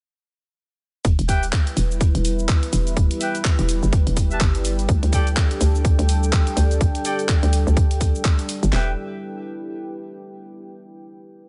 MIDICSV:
0, 0, Header, 1, 6, 480
1, 0, Start_track
1, 0, Key_signature, 1, "minor"
1, 0, Tempo, 480000
1, 1047, Time_signature, 4, 2, 24, 8
1, 11487, End_track
2, 0, Start_track
2, 0, Title_t, "Horn section"
2, 0, Program_c, 0, 61
2, 1286, Note_on_c, 0, 76, 92
2, 1287, Note_on_c, 0, 67, 100
2, 1287, Note_on_c, 0, 71, 96
2, 1287, Note_on_c, 0, 79, 110
2, 1436, Note_off_c, 0, 67, 0
2, 1436, Note_off_c, 0, 71, 0
2, 1436, Note_off_c, 0, 76, 0
2, 1436, Note_off_c, 0, 79, 0
2, 3206, Note_on_c, 0, 67, 92
2, 3206, Note_on_c, 0, 71, 85
2, 3206, Note_on_c, 0, 76, 81
2, 3206, Note_on_c, 0, 79, 100
2, 3356, Note_off_c, 0, 67, 0
2, 3356, Note_off_c, 0, 71, 0
2, 3356, Note_off_c, 0, 76, 0
2, 3356, Note_off_c, 0, 79, 0
2, 4309, Note_on_c, 0, 67, 82
2, 4309, Note_on_c, 0, 71, 77
2, 4309, Note_on_c, 0, 76, 75
2, 4309, Note_on_c, 0, 81, 85
2, 4418, Note_off_c, 0, 67, 0
2, 4418, Note_off_c, 0, 71, 0
2, 4418, Note_off_c, 0, 76, 0
2, 4418, Note_off_c, 0, 81, 0
2, 5128, Note_on_c, 0, 67, 106
2, 5128, Note_on_c, 0, 69, 92
2, 5128, Note_on_c, 0, 74, 97
2, 5128, Note_on_c, 0, 79, 111
2, 5276, Note_off_c, 0, 74, 0
2, 5276, Note_off_c, 0, 79, 0
2, 5277, Note_off_c, 0, 67, 0
2, 5277, Note_off_c, 0, 69, 0
2, 7048, Note_on_c, 0, 67, 93
2, 7048, Note_on_c, 0, 69, 83
2, 7048, Note_on_c, 0, 74, 85
2, 7048, Note_on_c, 0, 79, 103
2, 7196, Note_off_c, 0, 67, 0
2, 7196, Note_off_c, 0, 69, 0
2, 7196, Note_off_c, 0, 74, 0
2, 7196, Note_off_c, 0, 79, 0
2, 8728, Note_on_c, 0, 67, 85
2, 8728, Note_on_c, 0, 71, 78
2, 8728, Note_on_c, 0, 76, 81
2, 8728, Note_on_c, 0, 79, 98
2, 8914, Note_off_c, 0, 67, 0
2, 8914, Note_off_c, 0, 71, 0
2, 8914, Note_off_c, 0, 76, 0
2, 8914, Note_off_c, 0, 79, 0
2, 11487, End_track
3, 0, Start_track
3, 0, Title_t, "Ambient pad"
3, 0, Program_c, 1, 92
3, 1048, Note_on_c, 1, 64, 85
3, 1548, Note_on_c, 1, 71, 87
3, 1709, Note_on_c, 1, 67, 87
3, 2782, Note_on_c, 1, 79, 80
3, 4886, Note_on_c, 1, 62, 75
3, 5672, Note_off_c, 1, 71, 0
3, 6040, Note_on_c, 1, 69, 84
3, 6276, Note_off_c, 1, 64, 0
3, 8727, Note_off_c, 1, 62, 0
3, 8727, Note_off_c, 1, 69, 0
3, 8727, Note_off_c, 1, 79, 0
3, 8728, Note_off_c, 1, 67, 0
3, 8728, Note_on_c, 1, 64, 79
3, 8812, Note_on_c, 1, 67, 75
3, 8888, Note_on_c, 1, 71, 84
3, 8948, Note_on_c, 1, 79, 84
3, 10607, Note_off_c, 1, 71, 0
3, 10608, Note_off_c, 1, 64, 0
3, 10608, Note_off_c, 1, 67, 0
3, 10608, Note_off_c, 1, 79, 0
3, 11487, End_track
4, 0, Start_track
4, 0, Title_t, "Analog synth pad"
4, 0, Program_c, 2, 89
4, 1047, Note_on_c, 2, 55, 83
4, 1047, Note_on_c, 2, 64, 74
4, 1047, Note_on_c, 2, 71, 92
4, 4849, Note_off_c, 2, 64, 0
4, 4849, Note_off_c, 2, 71, 0
4, 4887, Note_on_c, 2, 62, 78
4, 4887, Note_on_c, 2, 69, 91
4, 8687, Note_off_c, 2, 55, 0
4, 8689, Note_off_c, 2, 62, 0
4, 8689, Note_off_c, 2, 69, 0
4, 11487, End_track
5, 0, Start_track
5, 0, Title_t, "FM bass"
5, 0, Program_c, 3, 39
5, 1047, Note_on_c, 3, 28, 97
5, 1166, Note_off_c, 3, 28, 0
5, 1189, Note_on_c, 3, 28, 97
5, 1512, Note_off_c, 3, 28, 0
5, 1767, Note_on_c, 3, 28, 96
5, 2126, Note_off_c, 3, 28, 0
5, 2149, Note_on_c, 3, 28, 104
5, 2472, Note_off_c, 3, 28, 0
5, 2728, Note_on_c, 3, 28, 98
5, 2952, Note_off_c, 3, 28, 0
5, 2967, Note_on_c, 3, 28, 95
5, 3086, Note_off_c, 3, 28, 0
5, 3588, Note_on_c, 3, 28, 101
5, 3806, Note_off_c, 3, 28, 0
5, 3828, Note_on_c, 3, 30, 96
5, 4046, Note_off_c, 3, 30, 0
5, 4069, Note_on_c, 3, 28, 102
5, 4392, Note_off_c, 3, 28, 0
5, 4407, Note_on_c, 3, 31, 104
5, 4871, Note_off_c, 3, 31, 0
5, 4887, Note_on_c, 3, 38, 99
5, 5006, Note_off_c, 3, 38, 0
5, 5028, Note_on_c, 3, 38, 94
5, 5351, Note_off_c, 3, 38, 0
5, 5607, Note_on_c, 3, 38, 94
5, 5966, Note_off_c, 3, 38, 0
5, 5988, Note_on_c, 3, 38, 104
5, 6311, Note_off_c, 3, 38, 0
5, 6566, Note_on_c, 3, 38, 97
5, 6791, Note_off_c, 3, 38, 0
5, 6808, Note_on_c, 3, 38, 92
5, 6926, Note_off_c, 3, 38, 0
5, 7429, Note_on_c, 3, 38, 101
5, 7646, Note_off_c, 3, 38, 0
5, 7669, Note_on_c, 3, 38, 96
5, 8126, Note_off_c, 3, 38, 0
5, 8629, Note_on_c, 3, 31, 102
5, 8712, Note_off_c, 3, 31, 0
5, 8727, Note_on_c, 3, 28, 97
5, 8950, Note_off_c, 3, 28, 0
5, 11487, End_track
6, 0, Start_track
6, 0, Title_t, "Drums"
6, 1047, Note_on_c, 9, 36, 122
6, 1048, Note_on_c, 9, 42, 81
6, 1050, Note_on_c, 9, 82, 44
6, 1147, Note_off_c, 9, 36, 0
6, 1148, Note_off_c, 9, 42, 0
6, 1150, Note_off_c, 9, 82, 0
6, 1189, Note_on_c, 9, 42, 56
6, 1191, Note_on_c, 9, 82, 24
6, 1287, Note_on_c, 9, 36, 56
6, 1287, Note_on_c, 9, 46, 106
6, 1289, Note_off_c, 9, 42, 0
6, 1290, Note_off_c, 9, 82, 0
6, 1290, Note_on_c, 9, 82, 77
6, 1387, Note_off_c, 9, 36, 0
6, 1387, Note_off_c, 9, 46, 0
6, 1390, Note_off_c, 9, 82, 0
6, 1429, Note_on_c, 9, 42, 41
6, 1432, Note_on_c, 9, 82, 34
6, 1527, Note_on_c, 9, 36, 122
6, 1527, Note_on_c, 9, 39, 123
6, 1528, Note_off_c, 9, 42, 0
6, 1528, Note_on_c, 9, 42, 82
6, 1530, Note_off_c, 9, 82, 0
6, 1530, Note_on_c, 9, 82, 45
6, 1627, Note_off_c, 9, 36, 0
6, 1627, Note_off_c, 9, 39, 0
6, 1628, Note_off_c, 9, 42, 0
6, 1630, Note_off_c, 9, 82, 0
6, 1670, Note_on_c, 9, 42, 55
6, 1672, Note_on_c, 9, 82, 23
6, 1768, Note_on_c, 9, 46, 88
6, 1770, Note_off_c, 9, 42, 0
6, 1770, Note_off_c, 9, 82, 0
6, 1770, Note_on_c, 9, 82, 78
6, 1868, Note_off_c, 9, 46, 0
6, 1870, Note_off_c, 9, 82, 0
6, 1912, Note_on_c, 9, 82, 34
6, 2007, Note_on_c, 9, 36, 123
6, 2008, Note_on_c, 9, 42, 83
6, 2010, Note_off_c, 9, 82, 0
6, 2010, Note_on_c, 9, 82, 48
6, 2107, Note_off_c, 9, 36, 0
6, 2108, Note_off_c, 9, 42, 0
6, 2110, Note_off_c, 9, 82, 0
6, 2149, Note_on_c, 9, 42, 53
6, 2152, Note_on_c, 9, 82, 22
6, 2248, Note_on_c, 9, 46, 102
6, 2249, Note_off_c, 9, 42, 0
6, 2250, Note_off_c, 9, 82, 0
6, 2250, Note_on_c, 9, 82, 79
6, 2348, Note_off_c, 9, 46, 0
6, 2350, Note_off_c, 9, 82, 0
6, 2391, Note_on_c, 9, 82, 35
6, 2487, Note_on_c, 9, 36, 120
6, 2487, Note_on_c, 9, 39, 122
6, 2488, Note_on_c, 9, 42, 84
6, 2490, Note_off_c, 9, 82, 0
6, 2490, Note_on_c, 9, 82, 46
6, 2587, Note_off_c, 9, 36, 0
6, 2587, Note_off_c, 9, 39, 0
6, 2588, Note_off_c, 9, 42, 0
6, 2590, Note_off_c, 9, 82, 0
6, 2629, Note_on_c, 9, 42, 56
6, 2631, Note_on_c, 9, 82, 23
6, 2728, Note_on_c, 9, 46, 95
6, 2729, Note_off_c, 9, 42, 0
6, 2730, Note_off_c, 9, 82, 0
6, 2730, Note_on_c, 9, 82, 84
6, 2828, Note_off_c, 9, 46, 0
6, 2830, Note_off_c, 9, 82, 0
6, 2869, Note_on_c, 9, 42, 38
6, 2871, Note_on_c, 9, 82, 33
6, 2967, Note_off_c, 9, 42, 0
6, 2967, Note_on_c, 9, 36, 121
6, 2967, Note_on_c, 9, 42, 80
6, 2970, Note_off_c, 9, 82, 0
6, 2970, Note_on_c, 9, 82, 44
6, 3067, Note_off_c, 9, 36, 0
6, 3067, Note_off_c, 9, 42, 0
6, 3070, Note_off_c, 9, 82, 0
6, 3108, Note_on_c, 9, 42, 54
6, 3110, Note_on_c, 9, 82, 22
6, 3207, Note_on_c, 9, 46, 111
6, 3208, Note_off_c, 9, 42, 0
6, 3209, Note_off_c, 9, 82, 0
6, 3209, Note_on_c, 9, 82, 78
6, 3307, Note_off_c, 9, 46, 0
6, 3309, Note_off_c, 9, 82, 0
6, 3348, Note_on_c, 9, 42, 39
6, 3350, Note_on_c, 9, 82, 34
6, 3446, Note_on_c, 9, 39, 127
6, 3447, Note_off_c, 9, 42, 0
6, 3447, Note_on_c, 9, 36, 117
6, 3447, Note_on_c, 9, 42, 84
6, 3449, Note_off_c, 9, 82, 0
6, 3449, Note_on_c, 9, 82, 45
6, 3546, Note_off_c, 9, 39, 0
6, 3547, Note_off_c, 9, 36, 0
6, 3547, Note_off_c, 9, 42, 0
6, 3549, Note_off_c, 9, 82, 0
6, 3588, Note_on_c, 9, 42, 55
6, 3591, Note_on_c, 9, 82, 21
6, 3687, Note_on_c, 9, 46, 95
6, 3688, Note_off_c, 9, 42, 0
6, 3689, Note_off_c, 9, 82, 0
6, 3689, Note_on_c, 9, 82, 75
6, 3787, Note_off_c, 9, 46, 0
6, 3789, Note_off_c, 9, 82, 0
6, 3831, Note_on_c, 9, 82, 31
6, 3927, Note_on_c, 9, 36, 127
6, 3927, Note_on_c, 9, 42, 81
6, 3929, Note_off_c, 9, 82, 0
6, 3929, Note_on_c, 9, 82, 42
6, 4027, Note_off_c, 9, 36, 0
6, 4027, Note_off_c, 9, 42, 0
6, 4029, Note_off_c, 9, 82, 0
6, 4068, Note_on_c, 9, 42, 53
6, 4070, Note_on_c, 9, 82, 22
6, 4167, Note_on_c, 9, 36, 64
6, 4167, Note_on_c, 9, 46, 112
6, 4168, Note_off_c, 9, 42, 0
6, 4169, Note_off_c, 9, 82, 0
6, 4169, Note_on_c, 9, 82, 80
6, 4267, Note_off_c, 9, 36, 0
6, 4267, Note_off_c, 9, 46, 0
6, 4269, Note_off_c, 9, 82, 0
6, 4311, Note_on_c, 9, 82, 33
6, 4405, Note_on_c, 9, 39, 127
6, 4407, Note_on_c, 9, 36, 124
6, 4407, Note_on_c, 9, 42, 86
6, 4409, Note_off_c, 9, 82, 0
6, 4409, Note_on_c, 9, 82, 45
6, 4505, Note_off_c, 9, 39, 0
6, 4507, Note_off_c, 9, 36, 0
6, 4507, Note_off_c, 9, 42, 0
6, 4509, Note_off_c, 9, 82, 0
6, 4549, Note_on_c, 9, 42, 55
6, 4551, Note_on_c, 9, 82, 21
6, 4648, Note_on_c, 9, 46, 98
6, 4649, Note_off_c, 9, 42, 0
6, 4650, Note_off_c, 9, 82, 0
6, 4650, Note_on_c, 9, 82, 75
6, 4748, Note_off_c, 9, 46, 0
6, 4750, Note_off_c, 9, 82, 0
6, 4789, Note_on_c, 9, 42, 37
6, 4791, Note_on_c, 9, 82, 32
6, 4887, Note_on_c, 9, 36, 127
6, 4888, Note_off_c, 9, 42, 0
6, 4888, Note_on_c, 9, 42, 74
6, 4890, Note_off_c, 9, 82, 0
6, 4890, Note_on_c, 9, 82, 43
6, 4987, Note_off_c, 9, 36, 0
6, 4988, Note_off_c, 9, 42, 0
6, 4990, Note_off_c, 9, 82, 0
6, 5030, Note_on_c, 9, 42, 55
6, 5032, Note_on_c, 9, 82, 22
6, 5127, Note_on_c, 9, 36, 64
6, 5128, Note_on_c, 9, 46, 116
6, 5130, Note_off_c, 9, 42, 0
6, 5130, Note_off_c, 9, 82, 0
6, 5130, Note_on_c, 9, 82, 75
6, 5227, Note_off_c, 9, 36, 0
6, 5228, Note_off_c, 9, 46, 0
6, 5230, Note_off_c, 9, 82, 0
6, 5270, Note_on_c, 9, 42, 37
6, 5272, Note_on_c, 9, 82, 33
6, 5367, Note_on_c, 9, 36, 121
6, 5367, Note_on_c, 9, 39, 126
6, 5369, Note_off_c, 9, 42, 0
6, 5369, Note_on_c, 9, 42, 78
6, 5371, Note_off_c, 9, 82, 0
6, 5371, Note_on_c, 9, 82, 44
6, 5467, Note_off_c, 9, 36, 0
6, 5467, Note_off_c, 9, 39, 0
6, 5469, Note_off_c, 9, 42, 0
6, 5471, Note_off_c, 9, 82, 0
6, 5510, Note_on_c, 9, 42, 51
6, 5512, Note_on_c, 9, 82, 22
6, 5608, Note_on_c, 9, 46, 92
6, 5610, Note_off_c, 9, 42, 0
6, 5610, Note_off_c, 9, 82, 0
6, 5610, Note_on_c, 9, 82, 74
6, 5708, Note_off_c, 9, 46, 0
6, 5710, Note_off_c, 9, 82, 0
6, 5752, Note_on_c, 9, 82, 31
6, 5847, Note_on_c, 9, 36, 127
6, 5848, Note_on_c, 9, 42, 80
6, 5850, Note_off_c, 9, 82, 0
6, 5850, Note_on_c, 9, 82, 42
6, 5947, Note_off_c, 9, 36, 0
6, 5948, Note_off_c, 9, 42, 0
6, 5950, Note_off_c, 9, 82, 0
6, 5990, Note_on_c, 9, 42, 54
6, 5992, Note_on_c, 9, 82, 21
6, 6088, Note_on_c, 9, 46, 116
6, 6090, Note_off_c, 9, 42, 0
6, 6090, Note_off_c, 9, 82, 0
6, 6090, Note_on_c, 9, 82, 76
6, 6188, Note_off_c, 9, 46, 0
6, 6190, Note_off_c, 9, 82, 0
6, 6232, Note_on_c, 9, 82, 35
6, 6327, Note_on_c, 9, 36, 127
6, 6327, Note_on_c, 9, 39, 125
6, 6329, Note_on_c, 9, 42, 80
6, 6331, Note_off_c, 9, 82, 0
6, 6331, Note_on_c, 9, 82, 43
6, 6427, Note_off_c, 9, 36, 0
6, 6427, Note_off_c, 9, 39, 0
6, 6429, Note_off_c, 9, 42, 0
6, 6431, Note_off_c, 9, 82, 0
6, 6470, Note_on_c, 9, 42, 54
6, 6472, Note_on_c, 9, 82, 21
6, 6569, Note_on_c, 9, 46, 100
6, 6570, Note_off_c, 9, 42, 0
6, 6571, Note_off_c, 9, 82, 0
6, 6571, Note_on_c, 9, 82, 80
6, 6669, Note_off_c, 9, 46, 0
6, 6671, Note_off_c, 9, 82, 0
6, 6711, Note_on_c, 9, 42, 34
6, 6713, Note_on_c, 9, 82, 34
6, 6808, Note_on_c, 9, 36, 127
6, 6809, Note_off_c, 9, 42, 0
6, 6809, Note_on_c, 9, 42, 76
6, 6811, Note_off_c, 9, 82, 0
6, 6811, Note_on_c, 9, 82, 45
6, 6908, Note_off_c, 9, 36, 0
6, 6909, Note_off_c, 9, 42, 0
6, 6911, Note_off_c, 9, 82, 0
6, 6950, Note_on_c, 9, 42, 53
6, 6953, Note_on_c, 9, 82, 22
6, 7049, Note_on_c, 9, 46, 110
6, 7050, Note_off_c, 9, 42, 0
6, 7051, Note_off_c, 9, 82, 0
6, 7051, Note_on_c, 9, 82, 78
6, 7149, Note_off_c, 9, 46, 0
6, 7151, Note_off_c, 9, 82, 0
6, 7190, Note_on_c, 9, 42, 36
6, 7192, Note_on_c, 9, 82, 35
6, 7288, Note_on_c, 9, 36, 120
6, 7288, Note_on_c, 9, 39, 120
6, 7289, Note_off_c, 9, 42, 0
6, 7289, Note_on_c, 9, 42, 79
6, 7292, Note_off_c, 9, 82, 0
6, 7292, Note_on_c, 9, 82, 45
6, 7387, Note_off_c, 9, 36, 0
6, 7388, Note_off_c, 9, 39, 0
6, 7389, Note_off_c, 9, 42, 0
6, 7392, Note_off_c, 9, 82, 0
6, 7430, Note_on_c, 9, 42, 51
6, 7432, Note_on_c, 9, 82, 22
6, 7529, Note_on_c, 9, 46, 95
6, 7530, Note_off_c, 9, 42, 0
6, 7531, Note_off_c, 9, 82, 0
6, 7531, Note_on_c, 9, 82, 74
6, 7629, Note_off_c, 9, 46, 0
6, 7631, Note_off_c, 9, 82, 0
6, 7672, Note_on_c, 9, 82, 32
6, 7768, Note_on_c, 9, 36, 127
6, 7768, Note_on_c, 9, 42, 79
6, 7770, Note_off_c, 9, 82, 0
6, 7770, Note_on_c, 9, 82, 45
6, 7868, Note_off_c, 9, 36, 0
6, 7868, Note_off_c, 9, 42, 0
6, 7870, Note_off_c, 9, 82, 0
6, 7909, Note_on_c, 9, 42, 49
6, 7911, Note_on_c, 9, 82, 22
6, 8008, Note_on_c, 9, 36, 64
6, 8008, Note_on_c, 9, 46, 108
6, 8009, Note_off_c, 9, 42, 0
6, 8010, Note_off_c, 9, 82, 0
6, 8010, Note_on_c, 9, 82, 80
6, 8108, Note_off_c, 9, 36, 0
6, 8108, Note_off_c, 9, 46, 0
6, 8111, Note_off_c, 9, 82, 0
6, 8152, Note_on_c, 9, 82, 35
6, 8247, Note_on_c, 9, 36, 121
6, 8247, Note_on_c, 9, 39, 122
6, 8248, Note_on_c, 9, 42, 76
6, 8250, Note_off_c, 9, 82, 0
6, 8250, Note_on_c, 9, 82, 45
6, 8347, Note_off_c, 9, 36, 0
6, 8347, Note_off_c, 9, 39, 0
6, 8348, Note_off_c, 9, 42, 0
6, 8350, Note_off_c, 9, 82, 0
6, 8389, Note_on_c, 9, 42, 50
6, 8392, Note_on_c, 9, 82, 22
6, 8488, Note_on_c, 9, 46, 98
6, 8489, Note_off_c, 9, 42, 0
6, 8490, Note_off_c, 9, 82, 0
6, 8490, Note_on_c, 9, 82, 83
6, 8588, Note_off_c, 9, 46, 0
6, 8590, Note_off_c, 9, 82, 0
6, 8630, Note_on_c, 9, 42, 36
6, 8632, Note_on_c, 9, 82, 31
6, 8727, Note_on_c, 9, 38, 107
6, 8727, Note_on_c, 9, 39, 89
6, 8730, Note_off_c, 9, 42, 0
6, 8732, Note_off_c, 9, 82, 0
6, 8827, Note_off_c, 9, 38, 0
6, 8827, Note_off_c, 9, 39, 0
6, 11487, End_track
0, 0, End_of_file